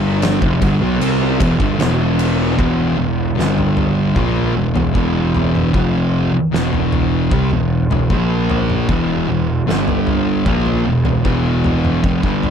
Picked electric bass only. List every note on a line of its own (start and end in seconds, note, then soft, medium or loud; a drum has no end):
0.00 0.38 G1 loud
0.42 0.60 F1 medium
0.62 0.80 G1 medium
0.82 1.00 B1 medium
1.02 1.38 C2 medium
1.40 1.59 E1 medium
1.60 1.79 G1 medium
1.81 2.55 E1 medium
2.59 2.95 E1 loud
2.99 3.35 E1 medium
3.38 4.13 G1 medium
4.16 4.53 A#1 medium
4.56 4.74 E1 medium
4.75 4.94 E1 medium
4.95 5.70 E1 medium
5.74 6.29 F1 medium
6.34 muted picked electric bass stroke soft
6.53 7.28 E1 medium
7.32 7.50 C2 medium
7.51 7.88 E1 medium
7.90 8.09 E1 medium
8.10 8.85 A#1 medium
8.89 9.26 E1 loud
9.29 9.66 E1 medium
9.68 10.43 G1 medium
10.46 10.83 A#1 medium
10.86 11.04 E1 medium
11.06 11.24 E1 medium
11.25 12.00 E1 medium
12.04 12.23 F1 loud
12.23 12.50 G1 loud